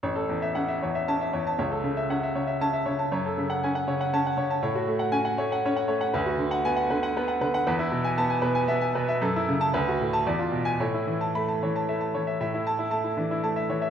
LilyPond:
<<
  \new Staff \with { instrumentName = "Grand piano" } { \time 3/4 \key a \major \tempo 4 = 117 << { r2 a''8 r8 | r2 a''8 r8 | r2 a''8 r8 | r4 gis''16 r4. r16 |
r4 gis''16 r4. r16 | r4 a''16 r4. r16 | r8. a''16 r8. a''16 r8. gis''16 | r4 b''16 r4. r16 |
r8 a''8 r2 | } \\ { cis''16 a'16 e,16 e''16 fis''16 e''16 cis''16 e''8 e''16 cis''16 a''16 | cis''16 a'16 cis16 e''16 fis''16 e''16 cis''16 e''8 e''16 cis''16 a''16 | cis''16 a'16 cis16 fis''16 gis''16 fis''16 cis''16 fis''8 fis''16 cis''16 a''16 | cis''16 fis'16 a16 fis''8 fis''16 cis''16 fis''16 cis''16 fis''16 cis''16 fis''16 |
b'16 fis'16 d16 fis''8 fis''16 b'16 fis''16 b'16 fis''16 b'16 fis''16 | b'16 e'16 b,16 gis''8 gis''16 b'16 gis''16 e''16 gis''16 b'16 e''16 | a'16 e'16 cis8 b'16 fis'16 a,8 d''16 f'16 b,8 | cis''16 e'16 e16 a''8 a''16 cis''16 a''16 e''16 a''16 cis''16 e''16 |
e''16 e'8 e'16 a''16 e'16 d'16 e'16 a''16 e''16 cis''16 e''16 | } >> }
  \new Staff \with { instrumentName = "Grand piano" } { \clef bass \time 3/4 \key a \major a,,4 cis'8 e,8 cis'8 e,8 | cis,4 cis'8 cis8 cis'8 cis8 | fis,4 cis'8 cis8 cis'8 cis8 | a,4 cis'8 a8 cis'8 a8 |
d,4 b8 d8 b8 d8 | e,4 b8 b,8 b8 b,8 | fis,4 d,4 e,4 | a,4 a8 e8 a8 e8 |
a,4 a8 e8 a8 e8 | }
>>